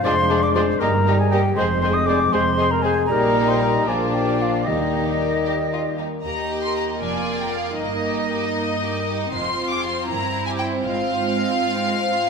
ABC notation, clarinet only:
X:1
M:6/8
L:1/16
Q:3/8=78
K:Eb
V:1 name="Clarinet"
c3 d c2 B3 A G2 | c3 e d2 c3 B A2 | B3 c B2 A2 G2 F2 | E8- E2 z2 |
z12 | z12 | z12 | z12 |]